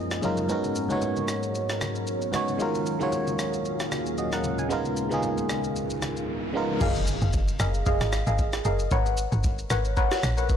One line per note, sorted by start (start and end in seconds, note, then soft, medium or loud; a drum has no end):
0.00 0.21 F#2 medium
0.00 0.47 F#2 medium
0.00 0.46 F3 medium
0.00 0.22 G#3 medium
0.00 0.48 A#3 medium
0.00 0.23 C#4 medium
0.00 0.24 D#4 medium
0.00 0.25 F4 medium
0.00 0.47 G#4 medium
0.00 0.25 A#4 medium
0.00 0.48 D#5 medium
0.11 cross-stick medium
0.11 shaker soft
0.21 0.44 F#2 medium
0.21 0.44 G#3 medium
0.21 0.45 C#4 medium
0.21 0.45 D#4 medium
0.21 0.46 F4 medium
0.21 0.46 A#4 medium
0.21 high conga medium
0.21 low conga medium
0.21 shaker medium
0.38 high conga medium
0.38 shaker soft
0.48 0.81 G#2 medium
0.48 2.58 G#2 medium
0.48 4.67 F#3 medium
0.48 0.81 B3 medium
0.48 2.58 B3 medium
0.48 0.82 C#4 medium
0.48 0.82 D#4 medium
0.48 0.82 F#4 medium
0.48 2.58 A#4 medium
0.48 0.83 A#4 medium
0.48 2.58 C#5 medium
0.48 low conga medium
0.48 shaker medium
0.64 high conga medium
0.64 shaker medium
0.76 shaker medium
0.89 1.73 G#2 medium
0.89 0.95 A#3 medium
0.89 1.74 C#4 medium
0.89 1.74 D#4 medium
0.89 1.75 F#4 medium
0.89 1.75 C#5 medium
0.89 high conga medium
0.89 shaker soft
0.96 1.77 B3 medium
1.02 low conga medium
1.02 shaker medium
1.17 high conga medium
1.17 shaker soft
1.28 cross-stick medium
1.28 shaker loud
1.43 shaker medium
1.55 shaker medium
1.69 cross-stick medium
1.69 shaker medium
1.81 cross-stick medium
1.81 high conga medium
1.81 shaker medium
1.96 shaker soft
2.07 shaker medium
2.22 shaker medium
2.32 2.54 G#2 medium
2.32 2.55 B3 medium
2.32 2.55 C#4 medium
2.32 2.56 D#4 medium
2.32 2.56 F#4 medium
2.32 cross-stick medium
2.32 high conga medium
2.32 low conga medium
2.32 shaker medium
2.36 2.56 C#5 medium
2.48 high conga medium
2.48 shaker soft
2.58 4.68 D#2 medium
2.58 4.68 A#2 medium
2.58 2.91 D#3 medium
2.58 2.92 G#3 medium
2.58 2.92 C#4 medium
2.58 4.68 C#4 medium
2.58 2.92 F4 medium
2.58 2.93 F#4 medium
2.58 4.68 G#4 medium
2.58 2.93 A#4 medium
2.58 6.77 F5 medium
2.58 low conga medium
2.58 shaker medium
2.74 high conga soft
2.74 shaker medium
2.87 shaker medium
2.99 3.84 D#3 medium
2.99 3.84 G#3 medium
2.99 3.84 C#4 medium
2.99 3.85 F4 medium
2.99 3.85 F#4 medium
2.99 3.86 C#5 medium
2.99 high conga medium
2.99 shaker soft
3.12 low conga medium
3.12 shaker medium
3.27 high conga medium
3.27 shaker medium
3.39 cross-stick medium
3.39 shaker loud
3.54 shaker medium
3.66 shaker medium
3.80 cross-stick medium
3.80 shaker medium
3.91 cross-stick medium
3.91 high conga medium
3.91 shaker loud
4.07 shaker soft
4.18 4.32 F#4 medium
4.18 4.32 D#5 medium
4.18 shaker medium
4.32 4.58 A#4 medium
4.32 4.58 F#5 medium
4.32 cross-stick medium
4.32 shaker medium
4.44 high conga medium
4.44 low conga medium
4.44 shaker medium
4.58 4.84 G#5 medium
4.58 high conga medium
4.58 shaker medium
4.69 6.79 C#2 medium
4.69 6.79 G#2 medium
4.69 5.02 C#3 medium
4.69 6.79 D#3 medium
4.69 5.02 G#3 medium
4.69 5.03 B3 medium
4.69 6.79 B3 medium
4.69 5.03 D#4 medium
4.69 5.03 F4 medium
4.69 6.79 A#4 medium
4.69 5.04 A#4 medium
4.69 riser medium
4.69 low conga medium
4.69 shaker medium
4.85 high conga medium
4.85 shaker medium
4.97 shaker medium
5.09 5.94 C#3 medium
5.09 5.95 G#3 medium
5.09 5.95 B3 medium
5.09 5.95 D#4 medium
5.09 5.96 F4 medium
5.09 high conga medium
5.09 shaker soft
5.13 5.96 G#4 medium
5.23 low conga medium
5.23 shaker medium
5.38 high conga medium
5.38 shaker soft
5.49 cross-stick medium
5.49 shaker medium
5.64 shaker medium
5.76 shaker medium
5.91 shaker medium
6.02 cross-stick medium
6.02 high conga medium
6.02 shaker medium
6.17 shaker soft
6.53 6.75 C#3 medium
6.53 6.76 G#3 medium
6.53 6.76 B3 medium
6.53 6.77 D#4 medium
6.53 6.77 F4 medium
6.53 6.77 A#4 medium
6.81 7.16 F#1 loud
6.81 7.54 G#4 loud
6.81 7.54 A#4 medium
6.81 7.54 D#5 medium
6.81 7.55 F5 loud
6.81 kick loud
6.81 crash loud
6.81 impact medium
6.81 shaker medium
6.96 shaker medium
7.07 shaker medium
7.22 7.55 F#1 loud
7.22 shaker medium
7.33 kick loud
7.33 shaker medium
7.48 shaker medium
7.60 7.83 F#1 loud
7.60 7.84 G#4 medium
7.60 7.84 A#4 medium
7.60 7.85 D#5 medium
7.60 7.85 F5 medium
7.60 cross-stick medium
7.60 shaker loud
7.75 shaker medium
7.86 7.99 F1 loud
7.86 8.24 G#4 loud
7.86 8.24 A#4 medium
7.86 8.24 D#5 medium
7.86 8.24 F5 loud
7.86 kick loud
7.86 shaker medium
8.01 8.24 G#1 loud
8.01 cross-stick medium
8.01 shaker medium
8.13 cross-stick loud
8.13 shaker loud
8.27 8.60 G#1 medium
8.27 8.62 G#4 medium
8.27 8.62 A#4 medium
8.27 8.63 D#5 medium
8.27 8.63 F5 medium
8.27 shaker medium
8.39 kick medium
8.39 shaker medium
8.53 cross-stick medium
8.53 shaker medium
8.65 8.88 F#1 medium
8.65 8.90 G#4 medium
8.65 8.90 A#4 medium
8.65 8.90 D#5 medium
8.65 8.90 F5 medium
8.65 shaker medium
8.80 shaker medium
8.91 9.27 G#1 loud
8.91 9.65 A#4 medium
8.91 9.65 B4 medium
8.91 9.65 C#5 medium
8.91 9.65 F#5 loud
8.91 kick loud
8.91 shaker medium
9.06 shaker medium
9.18 shaker loud
9.32 9.65 G#1 loud
9.32 shaker medium
9.44 kick medium
9.44 shaker medium
9.59 shaker medium
9.70 10.06 G#1 loud
9.70 9.95 A#4 medium
9.70 9.95 B4 medium
9.70 9.95 C#5 medium
9.70 9.95 F#5 medium
9.70 cross-stick medium
9.70 shaker loud
9.85 shaker medium
9.97 10.34 A#4 loud
9.97 10.34 B4 medium
9.97 10.34 C#5 medium
9.97 10.34 F#5 loud
9.97 kick loud
9.97 shaker medium
10.12 cross-stick medium
10.12 snare medium
10.12 shaker medium
10.23 10.57 A#1 medium
10.23 cross-stick loud
10.23 shaker loud
10.37 10.57 A#4 medium
10.37 10.57 B4 medium
10.37 10.57 C#5 medium
10.37 10.57 F#5 medium
10.37 shaker medium
10.49 kick medium
10.49 shaker medium